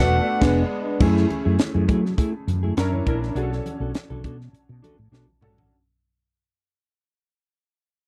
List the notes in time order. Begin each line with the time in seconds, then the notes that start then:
Already playing: A3 A4 F#5
0.00 E1 B3 D4 F#4
0.41 F1 G#3 B3 D4 G#4, kick, snare, crash
1.00 F#2 A3 C#4 E4 G#4, kick, crash, muted conga
1.17 snare
1.30 muted clean electric guitar stroke, closed hi-hat, high conga
1.45 F#2 A3 E4 G#4
1.59 snare, closed hi-hat, muted conga
1.74 F#2 A3 E4 G#4, high conga
1.88 F#3 A3 E4 G#4, kick, closed hi-hat, muted conga, low conga
2.04 muted clean electric guitar stroke, snare
2.17 A3 E4 G#4, kick, closed hi-hat
2.34 muted clean electric guitar stroke
2.47 F#2, muted clean electric guitar stroke, closed hi-hat, high conga
2.63 A3 E4 G#4, high conga
2.77 F#2 C#4 D4 E4 A#4, snare, closed hi-hat
2.93 D4 E4 C#5, high conga
3.06 A#1 C#4 D4 E4 A#4, kick, closed hi-hat, muted conga, high conga, low conga
3.22 muted clean electric guitar stroke, snare
3.35 B1 C#4 D4 F#4 G#4 A4, closed hi-hat
3.43 A4
3.52 muted clean electric guitar stroke, snare
3.65 muted clean electric guitar stroke, closed hi-hat, muted conga, high conga
3.80 B1 D4 F#4 A4
3.94 snare, closed hi-hat, muted conga
4.10 B1 D4 F#4 A4, high conga
4.24 B2 D4 F#4 A4, kick, closed hi-hat, muted conga, low conga
4.41 snare
4.53 muted fretless electric bass stroke, closed hi-hat
4.69 B2, muted clean electric guitar stroke
4.83 D4 F#4 A4, closed hi-hat, high conga
4.98 A2, muted clean electric guitar stroke, high conga
5.12 B2 D4 F#4 A4, snare
5.28 muted clean electric guitar stroke, high conga
5.41 G#2 C#4 D4 F#4 A4, muted clean electric guitar stroke, mid tom, muted conga, high conga, low conga
5.57 A1 D4 F#4 A4, floor tom